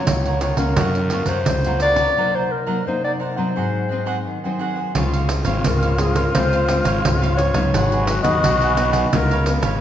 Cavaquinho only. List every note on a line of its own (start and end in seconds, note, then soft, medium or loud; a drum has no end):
0.26 0.41 A#4 soft
0.26 0.42 C#5 soft
0.26 0.41 F#5 soft
0.42 0.58 F4 medium
0.42 0.58 A#4 medium
0.42 0.57 C#5 medium
0.42 0.56 F#5 medium
0.57 0.75 A#4 soft
0.57 0.75 C#5 soft
0.57 0.75 F#5 soft
0.78 1.11 A#4 medium
0.78 1.11 C#5 medium
0.78 1.12 F#5 medium
1.11 1.28 F4 soft
1.11 1.28 A#4 soft
1.11 1.28 C#5 medium
1.11 1.29 F#5 medium
1.29 1.38 F4 medium
1.29 1.38 A#4 medium
1.29 1.38 C#5 medium
1.29 1.39 F#5 medium
1.66 1.81 A#4 soft
1.66 1.81 C#5 soft
1.66 1.81 F#5 soft
1.81 1.97 F4 medium
1.81 1.98 A#4 medium
1.81 1.98 C#5 medium
1.81 1.97 F#5 medium
1.98 2.16 A#4 soft
1.98 2.15 C#5 soft
1.98 2.15 F#5 soft
2.17 2.33 D#4 medium
2.17 2.33 A#4 medium
2.17 2.34 C5 medium
2.17 2.34 F#5 medium
2.35 2.66 A#4 soft
2.35 2.66 C5 soft
2.35 2.66 F#5 soft
2.66 2.77 D#4 medium
2.66 2.77 A#4 medium
2.66 2.77 C5 medium
2.66 2.77 F#5 medium
3.04 3.19 A#4 soft
3.04 3.20 C5 soft
3.04 3.20 F#5 soft
3.20 3.36 D#4 medium
3.20 3.36 A#4 medium
3.20 3.36 C5 medium
3.20 3.35 F#5 medium
3.36 3.55 A#4 soft
3.36 3.54 C5 soft
3.36 3.53 F#5 soft
3.56 3.88 F#4 medium
3.56 3.89 G#4 medium
3.56 3.90 C5 medium
3.56 3.90 F#5 medium
3.89 4.05 F#4 soft
3.89 4.05 G#4 soft
3.89 4.05 C5 soft
3.89 4.06 F#5 medium
4.06 4.16 F#4 medium
4.06 4.16 G#4 medium
4.06 4.16 C5 medium
4.06 4.17 F#5 medium
4.44 4.59 G#4 soft
4.44 4.59 C5 soft
4.44 4.59 F#5 soft
4.59 4.76 F#4 medium
4.59 4.76 G#4 medium
4.59 4.76 C5 medium
4.59 4.75 F#5 medium
4.76 4.94 G#4 soft
4.76 4.93 C5 soft
4.76 4.93 F#5 soft
4.95 5.11 F4 soft
4.95 5.11 C5 soft
4.95 5.12 C#5 soft
4.95 5.12 F5 medium
5.13 5.28 C5 soft
5.13 5.29 C#5 medium
5.13 5.29 F5 medium
5.29 muted cavaquinho stroke soft
5.45 5.63 C5 soft
5.45 5.63 C#5 medium
5.45 5.62 F5 medium
5.65 5.81 F4 medium
5.65 5.82 C5 medium
5.65 5.82 C#5 soft
5.65 5.81 F5 medium
5.82 6.16 C5 medium
5.82 6.15 C#5 medium
5.82 6.14 F5 medium
6.15 6.33 C5 soft
6.15 6.33 C#5 medium
6.15 6.32 F5 medium
6.35 6.51 F4 soft
6.35 6.51 C5 soft
6.35 6.51 C#5 soft
6.35 6.52 F5 medium
6.54 6.85 C5 medium
6.54 6.83 F5 medium
6.84 7.20 C5 medium
6.84 7.20 C#5 medium
6.84 7.19 F5 medium
7.22 7.37 C5 medium
7.22 7.38 C#5 medium
7.22 7.38 F5 medium
7.38 7.54 F4 soft
7.38 7.55 C5 medium
7.38 7.54 C#5 medium
7.38 7.53 F5 medium
7.54 7.72 C5 medium
7.54 7.72 C#5 medium
7.54 7.71 F5 medium
7.73 7.90 D#4 medium
7.73 7.90 G#4 soft
7.73 7.90 B4 medium
7.73 7.91 F#5 medium
7.92 8.07 G#4 medium
7.92 8.07 B4 medium
7.92 8.07 F#5 medium
8.08 muted cavaquinho stroke soft
8.23 8.42 G#4 medium
8.23 8.41 B4 medium
8.23 8.41 F#5 medium
8.43 8.59 D#4 soft
8.43 8.60 G#4 medium
8.43 8.60 B4 soft
8.43 8.60 F#5 medium
8.61 8.93 G#4 medium
8.61 8.93 B4 medium
8.61 8.91 F#5 medium
8.93 9.11 G#4 medium
8.93 9.11 B4 medium
8.93 9.10 F#5 medium
9.12 9.29 F4 soft
9.12 9.29 B4 soft
9.12 9.30 C#5 soft
9.12 9.30 F5 soft
9.31 9.64 B4 medium
9.31 9.63 C#5 medium
9.31 9.62 F5 medium
9.63 9.81 B4 medium
9.63 9.81 C#5 medium
9.63 9.81 F5 medium